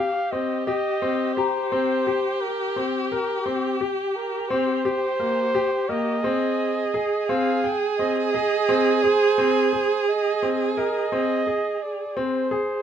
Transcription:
Already playing: grand piano G4, viola G4, flugelhorn F5, celesta A#5
0.32 grand piano C4, flugelhorn D#5
0.67 grand piano G4, flugelhorn D#5
1.02 grand piano C4
1.35 grand piano G4, flugelhorn C5, celesta A#5
1.72 grand piano C4
2.07 grand piano G4
2.41 flugelhorn A#4
2.76 grand piano C4
3.11 flugelhorn G4, grand piano A#4
3.46 grand piano C4
3.81 grand piano G4
4.16 flugelhorn A#4
4.49 grand piano C4, flugelhorn C5
4.85 grand piano G4
5.20 grand piano A#3
5.55 grand piano G4
5.89 grand piano A#3, flugelhorn D#5
6.23 grand piano C4, viola G#4
6.94 grand piano G#4
7.29 grand piano C4, flugelhorn F5
7.64 grand piano G5
7.98 grand piano C4, flugelhorn D#5
8.33 grand piano G#4, flugelhorn D#5
8.69 grand piano C4
9.03 grand piano G#4, flugelhorn C5
9.38 grand piano C4
9.73 grand piano G#4
10.08 flugelhorn D#5
10.43 grand piano C4
10.77 grand piano A#4, flugelhorn D#5
11.12 grand piano C4
11.47 grand piano G#4
11.83 flugelhorn D5
12.17 grand piano C4, flugelhorn C5
12.51 grand piano G#4

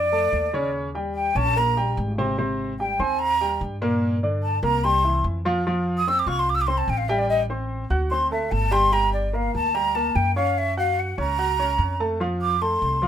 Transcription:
Already playing: upright bass F2, flute D5
0.12 upright piano A3 A4 A5
0.33 upright bass D#2
0.53 upright piano C#3 C#4 C#5
0.95 upright piano G3 G4 G5
1.15 flute G5
1.35 upright bass A#1, upright piano C#4 C#5 C#6, flute A5
1.56 upright piano A#3 A#4 A#5, flute A#5
1.77 upright piano G3 G4 G5
1.97 upright bass G#1
2.18 upright piano C3 C4 C5
2.38 upright piano C3 C4 C5
2.79 upright piano G3 G4 G5, flute G5
2.99 upright bass D#2, upright piano C4 C5 C6, flute G#5
3.19 flute A#5
3.41 upright piano G3 G4 G5
3.61 upright bass G2
3.82 upright piano A#2 A#3 A#4
4.23 upright piano D3 D4 D5
4.43 flute A5
4.63 upright bass C2, upright piano A#3 A#4 A#5, flute A#5
4.84 upright piano G3 G4 G5, flute C6
5.04 upright piano E3 E4 E5
5.24 upright bass F2
5.45 upright piano F3 F4 F5
5.67 upright piano F3 F4 F5
5.98 flute D#6
6.08 upright piano C4 C5 C6, flute E6
6.19 flute D6
6.26 upright bass C2, upright piano F4 F5 F6, flute C#6
6.39 flute C6
6.49 flute D6
6.55 flute E6
6.61 flute D6
6.67 upright piano C4 C5 C6, flute C6
6.78 flute A5
6.88 upright bass A1, flute G5
6.97 flute F5
7.08 upright piano G3 G4 G5, flute E5
7.18 flute D5
7.29 flute D#5
7.50 upright piano C4 C5 C6
7.90 upright bass D2, upright piano F#4 F#5 F#6
8.11 upright piano C4 C5 C6, flute C6
8.31 upright piano A3 A4 A5, flute E5
8.51 upright bass G1, flute A5
8.71 upright piano G3 G4 G5, flute C6
8.92 upright piano G3 G4 G5, flute A#5
9.13 flute D5
9.33 upright piano A#3 A#4 A#5, flute F5
9.55 upright bass D2, flute A5
9.74 upright piano G3 G4 G5, flute A#5
9.95 upright piano A#3 A#4 A#5, flute A5
10.15 upright bass F#2, flute G5
10.35 upright piano C#4 C#5 C#6, flute F5
10.58 flute E5
10.77 upright piano F#4 F#5 F#6, flute F5
10.99 flute F#5
11.18 upright bass C#2, upright piano C#4 C#5 C#6, flute A#5
11.38 upright piano F#4 F#5 F#6
11.59 upright piano C#4 C#5 C#6
11.78 upright bass F2
12.00 upright piano A3 A4 A5
12.20 upright piano F3 F4 F5
12.42 flute D6
12.61 upright piano A3 A4 A5, flute C6
12.82 upright bass C2
13.02 upright piano F3 F4 F5

